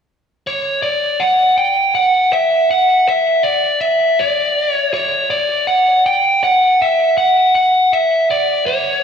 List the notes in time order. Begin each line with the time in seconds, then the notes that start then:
0.47 C#5
0.83 D5
1.20 F#5
1.58 G5
1.95 F#5
2.33 E5
2.71 F#5
3.08 E5
3.43 D5
3.81 E5
4.19 D5
4.72 C#5
4.94 C#5
5.30 D5
5.67 F#5
6.06 G5
6.44 F#5
6.82 E5
7.18 F#5
7.55 F#5
7.93 E5
8.31 D5
8.66 C#5